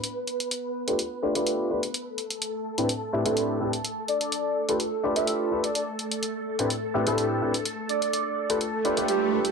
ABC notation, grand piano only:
X:1
M:4/4
L:1/16
Q:1/4=126
K:Gmix
V:1 name="Grand piano"
z6 z [A,DFGB] z2 [A,DFGB] [A,DFGB]3 [A,DFGB] z | z6 z [A,,CDEGB] z2 [A,,CDEGB] [A,,CDEGB]3 [A,,CDEGB] z | z6 z [A,DFGB] z2 [A,DFGB] [A,DFGB]3 [A,DFGB] z | z6 z [A,,CDEGB] z2 [A,,CDEGB] [A,,CDEGB]3 [A,,CDEGB] z |
z6 z [A,DFGB] z2 [A,DFGB] [A,DFGB]3 [A,DFGB] z |]